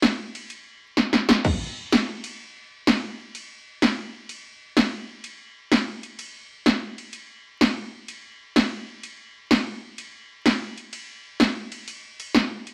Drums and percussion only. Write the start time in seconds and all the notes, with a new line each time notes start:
0.02 snare, hi-hat pedal, ride
0.35 ride
0.50 ride
0.97 snare, hi-hat pedal
1.13 snare
1.29 snare
1.45 kick, crash
1.92 snare, hi-hat pedal, ride
2.24 ride
2.87 snare, hi-hat pedal, ride
3.35 ride
3.82 snare, hi-hat pedal, ride
4.29 ride
4.77 snare, hi-hat pedal, ride
5.24 ride
5.72 snare, hi-hat pedal, ride
6.03 ride
6.19 ride
6.66 snare, hi-hat pedal, ride
6.98 ride
7.13 ride
7.61 snare, hi-hat pedal, ride
8.08 ride
8.56 snare, hi-hat pedal, ride
9.03 ride
9.51 snare, hi-hat pedal, ride
9.98 ride
10.46 snare, hi-hat pedal, ride
10.78 ride
10.93 ride
11.40 snare, hi-hat pedal, ride
11.72 ride
11.88 ride
12.20 ride
12.35 snare, hi-hat pedal
12.67 ride